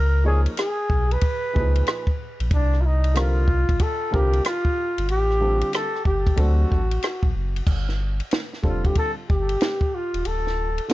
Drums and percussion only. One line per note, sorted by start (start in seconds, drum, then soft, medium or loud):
0.46 ride medium
0.57 cross-stick loud
0.57 hi-hat pedal medium
0.57 ride medium
0.90 kick medium
1.11 ride soft
1.21 kick medium
1.21 ride medium
1.56 kick medium
1.76 ride medium
1.87 cross-stick loud
1.87 hi-hat pedal soft
1.87 ride medium
2.07 kick medium
2.40 ride medium
2.51 kick loud
2.51 ride medium
2.73 cross-stick soft
3.04 ride medium
3.15 cross-stick loud
3.15 hi-hat pedal medium
3.15 ride medium
3.48 kick medium
3.69 kick medium
3.69 ride medium
3.79 kick medium
3.79 ride medium
4.14 kick medium
4.33 ride medium
4.45 cross-stick loud
4.45 hi-hat pedal soft
4.45 ride medium
4.65 kick medium
4.98 ride medium
5.09 ride medium
5.31 cross-stick soft
5.61 ride medium
5.73 cross-stick loud
5.73 hi-hat pedal medium
5.73 ride medium
5.95 cross-stick soft
6.05 kick medium
6.27 kick medium
6.27 ride soft
6.37 kick medium
6.37 ride medium
6.72 kick medium
6.91 ride medium
7.02 cross-stick loud
7.02 hi-hat pedal soft
7.02 ride medium
7.23 kick medium
7.56 ride medium
7.67 kick loud
7.67 crash medium
7.89 snare soft
8.20 ride medium
8.31 snare loud
8.31 hi-hat pedal medium
8.31 ride medium
8.53 snare soft
8.63 kick medium
8.85 kick medium
8.85 ride soft
8.95 kick medium
8.95 ride medium
9.30 kick medium
9.49 ride medium
9.61 snare loud
9.61 hi-hat pedal soft
9.61 ride medium
9.81 kick medium
10.14 ride medium
10.25 ride medium
10.47 snare soft
10.78 ride medium
10.89 hi-hat pedal medium
10.89 ride medium